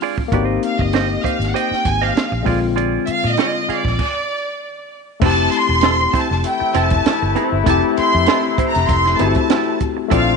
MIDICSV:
0, 0, Header, 1, 9, 480
1, 0, Start_track
1, 0, Tempo, 612245
1, 251, Time_signature, 4, 2, 24, 8
1, 8128, End_track
2, 0, Start_track
2, 0, Title_t, "Violin section"
2, 0, Program_c, 0, 48
2, 514, Note_on_c, 0, 77, 75
2, 624, Note_off_c, 0, 77, 0
2, 640, Note_on_c, 0, 75, 83
2, 981, Note_off_c, 0, 75, 0
2, 992, Note_on_c, 0, 77, 80
2, 1171, Note_off_c, 0, 77, 0
2, 1175, Note_on_c, 0, 78, 67
2, 1218, Note_off_c, 0, 78, 0
2, 1222, Note_on_c, 0, 79, 97
2, 1456, Note_off_c, 0, 79, 0
2, 1472, Note_on_c, 0, 80, 100
2, 1591, Note_off_c, 0, 80, 0
2, 1596, Note_on_c, 0, 77, 85
2, 1939, Note_off_c, 0, 77, 0
2, 2397, Note_on_c, 0, 76, 73
2, 2418, Note_off_c, 0, 76, 0
2, 2445, Note_on_c, 0, 77, 102
2, 2558, Note_off_c, 0, 77, 0
2, 2578, Note_on_c, 0, 75, 101
2, 2910, Note_off_c, 0, 75, 0
2, 2927, Note_on_c, 0, 74, 92
2, 3869, Note_off_c, 0, 74, 0
2, 4118, Note_on_c, 0, 81, 104
2, 4329, Note_off_c, 0, 81, 0
2, 4350, Note_on_c, 0, 84, 112
2, 4820, Note_off_c, 0, 84, 0
2, 4830, Note_on_c, 0, 81, 92
2, 5060, Note_off_c, 0, 81, 0
2, 5070, Note_on_c, 0, 79, 91
2, 5284, Note_off_c, 0, 79, 0
2, 5309, Note_on_c, 0, 81, 93
2, 5780, Note_off_c, 0, 81, 0
2, 6029, Note_on_c, 0, 81, 92
2, 6133, Note_off_c, 0, 81, 0
2, 6258, Note_on_c, 0, 84, 107
2, 6702, Note_off_c, 0, 84, 0
2, 6806, Note_on_c, 0, 82, 91
2, 6956, Note_off_c, 0, 82, 0
2, 6959, Note_on_c, 0, 84, 102
2, 7202, Note_on_c, 0, 81, 86
2, 7204, Note_off_c, 0, 84, 0
2, 7685, Note_off_c, 0, 81, 0
2, 7943, Note_on_c, 0, 77, 87
2, 8128, Note_off_c, 0, 77, 0
2, 8128, End_track
3, 0, Start_track
3, 0, Title_t, "Clean electric guitar"
3, 0, Program_c, 1, 27
3, 17, Note_on_c, 1, 65, 74
3, 21, Note_on_c, 1, 68, 74
3, 26, Note_on_c, 1, 74, 76
3, 138, Note_off_c, 1, 74, 0
3, 147, Note_off_c, 1, 68, 0
3, 172, Note_off_c, 1, 65, 0
3, 255, Note_on_c, 1, 66, 60
3, 262, Note_on_c, 1, 71, 63
3, 269, Note_on_c, 1, 74, 65
3, 349, Note_off_c, 1, 66, 0
3, 349, Note_on_c, 1, 67, 60
3, 355, Note_off_c, 1, 74, 0
3, 355, Note_on_c, 1, 75, 65
3, 356, Note_off_c, 1, 71, 0
3, 356, Note_on_c, 1, 72, 63
3, 475, Note_off_c, 1, 67, 0
3, 479, Note_off_c, 1, 72, 0
3, 482, Note_off_c, 1, 75, 0
3, 734, Note_on_c, 1, 67, 61
3, 736, Note_on_c, 1, 72, 67
3, 745, Note_on_c, 1, 75, 84
3, 854, Note_off_c, 1, 75, 0
3, 866, Note_off_c, 1, 72, 0
3, 890, Note_off_c, 1, 67, 0
3, 970, Note_on_c, 1, 67, 59
3, 977, Note_on_c, 1, 72, 59
3, 980, Note_on_c, 1, 77, 70
3, 1096, Note_off_c, 1, 72, 0
3, 1096, Note_off_c, 1, 77, 0
3, 1098, Note_off_c, 1, 67, 0
3, 1208, Note_on_c, 1, 67, 71
3, 1213, Note_on_c, 1, 72, 85
3, 1219, Note_on_c, 1, 75, 84
3, 1368, Note_off_c, 1, 67, 0
3, 1370, Note_off_c, 1, 72, 0
3, 1373, Note_off_c, 1, 75, 0
3, 1580, Note_on_c, 1, 75, 53
3, 1584, Note_on_c, 1, 72, 47
3, 1590, Note_on_c, 1, 67, 42
3, 1682, Note_off_c, 1, 67, 0
3, 1684, Note_off_c, 1, 72, 0
3, 1689, Note_off_c, 1, 75, 0
3, 1926, Note_on_c, 1, 65, 78
3, 1930, Note_on_c, 1, 68, 77
3, 1938, Note_on_c, 1, 74, 78
3, 2046, Note_off_c, 1, 74, 0
3, 2057, Note_off_c, 1, 68, 0
3, 2086, Note_off_c, 1, 65, 0
3, 2162, Note_on_c, 1, 65, 70
3, 2166, Note_on_c, 1, 68, 68
3, 2172, Note_on_c, 1, 74, 74
3, 2389, Note_off_c, 1, 65, 0
3, 2391, Note_off_c, 1, 68, 0
3, 2394, Note_off_c, 1, 74, 0
3, 2649, Note_on_c, 1, 65, 65
3, 2654, Note_on_c, 1, 68, 74
3, 2659, Note_on_c, 1, 74, 81
3, 2772, Note_off_c, 1, 74, 0
3, 2780, Note_off_c, 1, 68, 0
3, 2814, Note_off_c, 1, 65, 0
3, 2890, Note_on_c, 1, 65, 56
3, 2897, Note_on_c, 1, 68, 68
3, 2901, Note_on_c, 1, 77, 65
3, 3016, Note_off_c, 1, 77, 0
3, 3018, Note_off_c, 1, 65, 0
3, 3018, Note_off_c, 1, 68, 0
3, 4090, Note_on_c, 1, 60, 68
3, 4098, Note_on_c, 1, 64, 78
3, 4104, Note_on_c, 1, 69, 78
3, 4313, Note_off_c, 1, 60, 0
3, 4317, Note_off_c, 1, 64, 0
3, 4320, Note_off_c, 1, 69, 0
3, 4570, Note_on_c, 1, 60, 77
3, 4575, Note_on_c, 1, 64, 80
3, 4579, Note_on_c, 1, 69, 92
3, 4691, Note_off_c, 1, 69, 0
3, 4699, Note_off_c, 1, 64, 0
3, 4728, Note_off_c, 1, 60, 0
3, 4807, Note_on_c, 1, 60, 66
3, 4814, Note_on_c, 1, 64, 61
3, 4817, Note_on_c, 1, 72, 70
3, 4936, Note_off_c, 1, 60, 0
3, 4938, Note_off_c, 1, 72, 0
3, 4940, Note_off_c, 1, 64, 0
3, 5288, Note_on_c, 1, 60, 82
3, 5292, Note_on_c, 1, 64, 83
3, 5302, Note_on_c, 1, 69, 89
3, 5413, Note_off_c, 1, 69, 0
3, 5419, Note_off_c, 1, 64, 0
3, 5447, Note_off_c, 1, 60, 0
3, 5766, Note_on_c, 1, 60, 72
3, 5773, Note_on_c, 1, 64, 70
3, 5777, Note_on_c, 1, 69, 74
3, 5888, Note_off_c, 1, 69, 0
3, 5893, Note_off_c, 1, 64, 0
3, 5932, Note_off_c, 1, 60, 0
3, 6004, Note_on_c, 1, 60, 74
3, 6014, Note_on_c, 1, 64, 69
3, 6016, Note_on_c, 1, 69, 79
3, 6229, Note_off_c, 1, 60, 0
3, 6234, Note_off_c, 1, 64, 0
3, 6235, Note_off_c, 1, 69, 0
3, 6486, Note_on_c, 1, 60, 72
3, 6494, Note_on_c, 1, 64, 83
3, 6497, Note_on_c, 1, 69, 86
3, 6609, Note_off_c, 1, 69, 0
3, 6615, Note_off_c, 1, 64, 0
3, 6645, Note_off_c, 1, 60, 0
3, 6729, Note_on_c, 1, 60, 61
3, 6732, Note_on_c, 1, 64, 65
3, 6737, Note_on_c, 1, 72, 67
3, 6856, Note_off_c, 1, 60, 0
3, 6856, Note_off_c, 1, 72, 0
3, 6858, Note_off_c, 1, 64, 0
3, 7210, Note_on_c, 1, 60, 73
3, 7217, Note_on_c, 1, 64, 86
3, 7221, Note_on_c, 1, 69, 80
3, 7334, Note_off_c, 1, 69, 0
3, 7342, Note_off_c, 1, 64, 0
3, 7373, Note_off_c, 1, 60, 0
3, 7448, Note_on_c, 1, 60, 69
3, 7452, Note_on_c, 1, 64, 81
3, 7457, Note_on_c, 1, 69, 76
3, 7671, Note_off_c, 1, 60, 0
3, 7673, Note_off_c, 1, 64, 0
3, 7675, Note_off_c, 1, 69, 0
3, 7920, Note_on_c, 1, 64, 65
3, 7926, Note_on_c, 1, 69, 76
3, 7933, Note_on_c, 1, 74, 70
3, 8128, Note_off_c, 1, 64, 0
3, 8128, Note_off_c, 1, 69, 0
3, 8128, Note_off_c, 1, 74, 0
3, 8128, End_track
4, 0, Start_track
4, 0, Title_t, "Tine electric piano"
4, 0, Program_c, 2, 4
4, 0, Control_c, 2, 64, 127
4, 220, Note_on_c, 2, 58, 74
4, 240, Note_on_c, 2, 59, 55
4, 258, Note_on_c, 2, 63, 65
4, 261, Control_c, 2, 64, 0
4, 266, Note_on_c, 2, 67, 76
4, 289, Note_on_c, 2, 60, 67
4, 300, Note_off_c, 2, 59, 0
4, 383, Control_c, 2, 64, 127
4, 1885, Note_off_c, 2, 58, 0
4, 1901, Note_on_c, 2, 56, 65
4, 1903, Note_off_c, 2, 63, 0
4, 1906, Note_off_c, 2, 60, 0
4, 1908, Note_off_c, 2, 67, 0
4, 1915, Note_on_c, 2, 60, 58
4, 1936, Note_on_c, 2, 50, 60
4, 1942, Control_c, 2, 64, 0
4, 1950, Note_on_c, 2, 65, 69
4, 2088, Control_c, 2, 64, 127
4, 3092, Note_off_c, 2, 56, 0
4, 3099, Note_off_c, 2, 60, 0
4, 3110, Note_off_c, 2, 50, 0
4, 3117, Note_off_c, 2, 65, 0
4, 3141, Control_c, 2, 64, 0
4, 4076, Note_on_c, 2, 57, 64
4, 4090, Note_on_c, 2, 60, 58
4, 4108, Note_on_c, 2, 64, 59
4, 4121, Note_on_c, 2, 67, 69
4, 4255, Control_c, 2, 64, 127
4, 5971, Note_off_c, 2, 57, 0
4, 5978, Note_off_c, 2, 60, 0
4, 5987, Note_off_c, 2, 64, 0
4, 5990, Note_on_c, 2, 57, 62
4, 5994, Note_off_c, 2, 67, 0
4, 6005, Note_on_c, 2, 60, 62
4, 6017, Note_on_c, 2, 64, 62
4, 6038, Note_on_c, 2, 67, 72
4, 7175, Note_off_c, 2, 57, 0
4, 7183, Note_off_c, 2, 60, 0
4, 7187, Note_on_c, 2, 57, 45
4, 7189, Note_off_c, 2, 64, 0
4, 7196, Note_on_c, 2, 60, 40
4, 7200, Note_off_c, 2, 67, 0
4, 7206, Note_on_c, 2, 64, 41
4, 7214, Note_on_c, 2, 66, 41
4, 7263, Note_on_c, 2, 67, 48
4, 7267, Note_off_c, 2, 66, 0
4, 7896, Note_off_c, 2, 57, 0
4, 7905, Note_on_c, 2, 57, 67
4, 7913, Note_off_c, 2, 60, 0
4, 7923, Note_on_c, 2, 60, 61
4, 7928, Note_off_c, 2, 64, 0
4, 7937, Note_on_c, 2, 62, 58
4, 7941, Control_c, 2, 64, 0
4, 7953, Note_on_c, 2, 65, 74
4, 7956, Note_off_c, 2, 67, 0
4, 8055, Control_c, 2, 64, 127
4, 8128, Note_off_c, 2, 57, 0
4, 8128, Note_off_c, 2, 60, 0
4, 8128, Note_off_c, 2, 62, 0
4, 8128, Note_off_c, 2, 65, 0
4, 8128, End_track
5, 0, Start_track
5, 0, Title_t, "Horn section"
5, 0, Program_c, 3, 61
5, 5052, Note_on_c, 3, 48, 67
5, 5052, Note_on_c, 3, 57, 71
5, 5054, Note_on_c, 3, 52, 73
5, 5054, Note_on_c, 3, 64, 79
5, 7659, Note_off_c, 3, 48, 0
5, 7659, Note_off_c, 3, 57, 0
5, 7660, Note_off_c, 3, 52, 0
5, 7660, Note_off_c, 3, 64, 0
5, 7931, Note_on_c, 3, 53, 72
5, 7931, Note_on_c, 3, 65, 78
5, 7933, Note_on_c, 3, 50, 66
5, 7933, Note_on_c, 3, 60, 68
5, 8128, Note_off_c, 3, 50, 0
5, 8128, Note_off_c, 3, 53, 0
5, 8128, Note_off_c, 3, 60, 0
5, 8128, Note_off_c, 3, 65, 0
5, 8128, End_track
6, 0, Start_track
6, 0, Title_t, "Fingered electric bass"
6, 0, Program_c, 4, 33
6, 250, Note_on_c, 4, 32, 96
6, 446, Note_off_c, 4, 32, 0
6, 620, Note_on_c, 4, 31, 80
6, 906, Note_off_c, 4, 31, 0
6, 1092, Note_on_c, 4, 32, 80
6, 1186, Note_off_c, 4, 32, 0
6, 1455, Note_on_c, 4, 32, 94
6, 1649, Note_off_c, 4, 32, 0
6, 1817, Note_on_c, 4, 34, 72
6, 1908, Note_off_c, 4, 34, 0
6, 1930, Note_on_c, 4, 34, 90
6, 2322, Note_off_c, 4, 34, 0
6, 2543, Note_on_c, 4, 46, 88
6, 2632, Note_off_c, 4, 46, 0
6, 3018, Note_on_c, 4, 34, 88
6, 3109, Note_off_c, 4, 34, 0
6, 4091, Note_on_c, 4, 29, 98
6, 4287, Note_off_c, 4, 29, 0
6, 4459, Note_on_c, 4, 28, 84
6, 4745, Note_off_c, 4, 28, 0
6, 4946, Note_on_c, 4, 29, 95
6, 5034, Note_off_c, 4, 29, 0
6, 5293, Note_on_c, 4, 29, 91
6, 5488, Note_off_c, 4, 29, 0
6, 5664, Note_on_c, 4, 31, 81
6, 5752, Note_off_c, 4, 31, 0
6, 5898, Note_on_c, 4, 31, 82
6, 5989, Note_off_c, 4, 31, 0
6, 6009, Note_on_c, 4, 29, 101
6, 6115, Note_off_c, 4, 29, 0
6, 6386, Note_on_c, 4, 41, 91
6, 6474, Note_off_c, 4, 41, 0
6, 6867, Note_on_c, 4, 29, 90
6, 6954, Note_off_c, 4, 29, 0
6, 6972, Note_on_c, 4, 29, 96
6, 7167, Note_off_c, 4, 29, 0
6, 7217, Note_on_c, 4, 31, 93
6, 7320, Note_off_c, 4, 31, 0
6, 7934, Note_on_c, 4, 34, 96
6, 8128, Note_off_c, 4, 34, 0
6, 8128, End_track
7, 0, Start_track
7, 0, Title_t, "Muted clean electric guitar strokes"
7, 147, Note_on_c, 9, 29, 37
7, 226, Note_off_c, 9, 29, 0
7, 635, Note_on_c, 9, 29, 46
7, 713, Note_off_c, 9, 29, 0
7, 864, Note_on_c, 9, 29, 32
7, 942, Note_off_c, 9, 29, 0
7, 1099, Note_on_c, 9, 29, 38
7, 1177, Note_off_c, 9, 29, 0
7, 1452, Note_on_c, 9, 29, 34
7, 1531, Note_off_c, 9, 29, 0
7, 1691, Note_on_c, 9, 29, 36
7, 1769, Note_off_c, 9, 29, 0
7, 1820, Note_on_c, 9, 29, 45
7, 1899, Note_off_c, 9, 29, 0
7, 2055, Note_on_c, 9, 29, 35
7, 2134, Note_off_c, 9, 29, 0
7, 2540, Note_on_c, 9, 29, 40
7, 2618, Note_off_c, 9, 29, 0
7, 2782, Note_on_c, 9, 29, 39
7, 2860, Note_off_c, 9, 29, 0
7, 3019, Note_on_c, 9, 29, 42
7, 3098, Note_off_c, 9, 29, 0
7, 4466, Note_on_c, 9, 29, 46
7, 4545, Note_off_c, 9, 29, 0
7, 4701, Note_on_c, 9, 29, 36
7, 4779, Note_off_c, 9, 29, 0
7, 4941, Note_on_c, 9, 29, 42
7, 5019, Note_off_c, 9, 29, 0
7, 5176, Note_on_c, 9, 29, 37
7, 5255, Note_off_c, 9, 29, 0
7, 5422, Note_on_c, 9, 29, 44
7, 5500, Note_off_c, 9, 29, 0
7, 5537, Note_on_c, 9, 29, 43
7, 5615, Note_off_c, 9, 29, 0
7, 5664, Note_on_c, 9, 29, 51
7, 5742, Note_off_c, 9, 29, 0
7, 5897, Note_on_c, 9, 29, 45
7, 5975, Note_off_c, 9, 29, 0
7, 6382, Note_on_c, 9, 29, 47
7, 6461, Note_off_c, 9, 29, 0
7, 6618, Note_on_c, 9, 29, 31
7, 6697, Note_off_c, 9, 29, 0
7, 6859, Note_on_c, 9, 29, 42
7, 6937, Note_off_c, 9, 29, 0
7, 7100, Note_on_c, 9, 29, 42
7, 7178, Note_off_c, 9, 29, 0
7, 7344, Note_on_c, 9, 29, 43
7, 7422, Note_off_c, 9, 29, 0
7, 7693, Note_on_c, 9, 29, 36
7, 7771, Note_off_c, 9, 29, 0
7, 7814, Note_on_c, 9, 29, 42
7, 7892, Note_off_c, 9, 29, 0
7, 8128, End_track
8, 0, Start_track
8, 0, Title_t, "Muted fingered electric bass strokes"
8, 972, Note_on_c, 9, 29, 45
8, 1050, Note_off_c, 9, 29, 0
8, 1341, Note_on_c, 9, 29, 46
8, 1420, Note_off_c, 9, 29, 0
8, 1689, Note_on_c, 9, 29, 45
8, 1767, Note_off_c, 9, 29, 0
8, 2415, Note_on_c, 9, 29, 42
8, 2494, Note_off_c, 9, 29, 0
8, 2892, Note_on_c, 9, 29, 47
8, 2970, Note_off_c, 9, 29, 0
8, 4810, Note_on_c, 9, 29, 49
8, 4888, Note_off_c, 9, 29, 0
8, 5183, Note_on_c, 9, 29, 43
8, 5262, Note_off_c, 9, 29, 0
8, 5536, Note_on_c, 9, 29, 49
8, 5615, Note_off_c, 9, 29, 0
8, 6257, Note_on_c, 9, 29, 45
8, 6336, Note_off_c, 9, 29, 0
8, 6728, Note_on_c, 9, 29, 50
8, 6806, Note_off_c, 9, 29, 0
8, 8128, End_track
9, 0, Start_track
9, 0, Title_t, "Drums"
9, 8, Note_on_c, 9, 46, 59
9, 86, Note_off_c, 9, 46, 0
9, 139, Note_on_c, 9, 36, 81
9, 217, Note_off_c, 9, 36, 0
9, 251, Note_on_c, 9, 36, 103
9, 253, Note_on_c, 9, 42, 93
9, 329, Note_off_c, 9, 36, 0
9, 331, Note_off_c, 9, 42, 0
9, 493, Note_on_c, 9, 42, 66
9, 571, Note_off_c, 9, 42, 0
9, 620, Note_on_c, 9, 36, 83
9, 699, Note_off_c, 9, 36, 0
9, 730, Note_on_c, 9, 42, 72
9, 743, Note_on_c, 9, 38, 92
9, 808, Note_off_c, 9, 42, 0
9, 822, Note_off_c, 9, 38, 0
9, 975, Note_on_c, 9, 36, 88
9, 989, Note_on_c, 9, 42, 66
9, 1053, Note_off_c, 9, 36, 0
9, 1068, Note_off_c, 9, 42, 0
9, 1110, Note_on_c, 9, 42, 52
9, 1125, Note_on_c, 9, 38, 31
9, 1189, Note_off_c, 9, 42, 0
9, 1204, Note_off_c, 9, 38, 0
9, 1225, Note_on_c, 9, 42, 76
9, 1303, Note_off_c, 9, 42, 0
9, 1358, Note_on_c, 9, 38, 33
9, 1437, Note_off_c, 9, 38, 0
9, 1452, Note_on_c, 9, 42, 77
9, 1453, Note_on_c, 9, 36, 85
9, 1531, Note_off_c, 9, 36, 0
9, 1531, Note_off_c, 9, 42, 0
9, 1701, Note_on_c, 9, 42, 79
9, 1705, Note_on_c, 9, 38, 106
9, 1779, Note_off_c, 9, 42, 0
9, 1783, Note_off_c, 9, 38, 0
9, 1931, Note_on_c, 9, 36, 92
9, 1931, Note_on_c, 9, 46, 58
9, 2009, Note_off_c, 9, 36, 0
9, 2010, Note_off_c, 9, 46, 0
9, 2178, Note_on_c, 9, 42, 88
9, 2257, Note_off_c, 9, 42, 0
9, 2408, Note_on_c, 9, 42, 67
9, 2486, Note_off_c, 9, 42, 0
9, 2644, Note_on_c, 9, 42, 76
9, 2658, Note_on_c, 9, 38, 101
9, 2723, Note_off_c, 9, 42, 0
9, 2737, Note_off_c, 9, 38, 0
9, 2899, Note_on_c, 9, 42, 60
9, 2978, Note_off_c, 9, 42, 0
9, 3016, Note_on_c, 9, 36, 84
9, 3033, Note_on_c, 9, 38, 30
9, 3095, Note_off_c, 9, 36, 0
9, 3111, Note_off_c, 9, 38, 0
9, 3128, Note_on_c, 9, 49, 85
9, 3129, Note_on_c, 9, 36, 91
9, 3206, Note_off_c, 9, 49, 0
9, 3207, Note_off_c, 9, 36, 0
9, 4090, Note_on_c, 9, 36, 120
9, 4090, Note_on_c, 9, 49, 95
9, 4168, Note_off_c, 9, 36, 0
9, 4169, Note_off_c, 9, 49, 0
9, 4327, Note_on_c, 9, 42, 71
9, 4406, Note_off_c, 9, 42, 0
9, 4557, Note_on_c, 9, 42, 84
9, 4571, Note_on_c, 9, 38, 100
9, 4635, Note_off_c, 9, 42, 0
9, 4649, Note_off_c, 9, 38, 0
9, 4811, Note_on_c, 9, 36, 97
9, 4822, Note_on_c, 9, 42, 70
9, 4889, Note_off_c, 9, 36, 0
9, 4900, Note_off_c, 9, 42, 0
9, 4951, Note_on_c, 9, 38, 35
9, 5029, Note_off_c, 9, 38, 0
9, 5048, Note_on_c, 9, 42, 77
9, 5127, Note_off_c, 9, 42, 0
9, 5288, Note_on_c, 9, 42, 79
9, 5367, Note_off_c, 9, 42, 0
9, 5412, Note_on_c, 9, 42, 49
9, 5420, Note_on_c, 9, 36, 86
9, 5491, Note_off_c, 9, 42, 0
9, 5499, Note_off_c, 9, 36, 0
9, 5534, Note_on_c, 9, 42, 84
9, 5538, Note_on_c, 9, 38, 110
9, 5613, Note_off_c, 9, 42, 0
9, 5617, Note_off_c, 9, 38, 0
9, 5770, Note_on_c, 9, 42, 60
9, 5849, Note_off_c, 9, 42, 0
9, 6009, Note_on_c, 9, 36, 117
9, 6012, Note_on_c, 9, 42, 103
9, 6087, Note_off_c, 9, 36, 0
9, 6091, Note_off_c, 9, 42, 0
9, 6252, Note_on_c, 9, 42, 75
9, 6331, Note_off_c, 9, 42, 0
9, 6479, Note_on_c, 9, 42, 83
9, 6493, Note_on_c, 9, 38, 108
9, 6558, Note_off_c, 9, 42, 0
9, 6571, Note_off_c, 9, 38, 0
9, 6728, Note_on_c, 9, 36, 94
9, 6733, Note_on_c, 9, 42, 66
9, 6806, Note_off_c, 9, 36, 0
9, 6812, Note_off_c, 9, 42, 0
9, 6857, Note_on_c, 9, 42, 58
9, 6872, Note_on_c, 9, 38, 34
9, 6936, Note_off_c, 9, 42, 0
9, 6951, Note_off_c, 9, 38, 0
9, 6968, Note_on_c, 9, 36, 89
9, 6970, Note_on_c, 9, 42, 78
9, 7046, Note_off_c, 9, 36, 0
9, 7049, Note_off_c, 9, 42, 0
9, 7107, Note_on_c, 9, 38, 37
9, 7185, Note_off_c, 9, 38, 0
9, 7206, Note_on_c, 9, 42, 84
9, 7285, Note_off_c, 9, 42, 0
9, 7328, Note_on_c, 9, 42, 48
9, 7339, Note_on_c, 9, 36, 84
9, 7406, Note_off_c, 9, 42, 0
9, 7418, Note_off_c, 9, 36, 0
9, 7446, Note_on_c, 9, 42, 82
9, 7450, Note_on_c, 9, 38, 108
9, 7525, Note_off_c, 9, 42, 0
9, 7529, Note_off_c, 9, 38, 0
9, 7687, Note_on_c, 9, 42, 61
9, 7689, Note_on_c, 9, 36, 83
9, 7765, Note_off_c, 9, 42, 0
9, 7768, Note_off_c, 9, 36, 0
9, 7929, Note_on_c, 9, 42, 94
9, 7930, Note_on_c, 9, 36, 119
9, 8007, Note_off_c, 9, 42, 0
9, 8008, Note_off_c, 9, 36, 0
9, 8128, End_track
0, 0, End_of_file